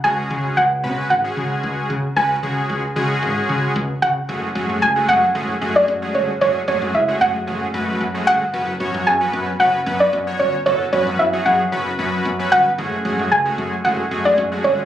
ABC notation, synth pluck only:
X:1
M:4/4
L:1/16
Q:1/4=113
K:F#m
V:1 name="Synth pluck"
g4 f4 f8 | g12 z2 f2- | f2 z2 g2 f4- f d3 c2 | c2 c2 e2 f6 z2 f2- |
f2 z2 g4 f3 d3 c2 | c2 c2 e2 f6 z2 f2- | f2 z2 g4 f3 d3 c2 |]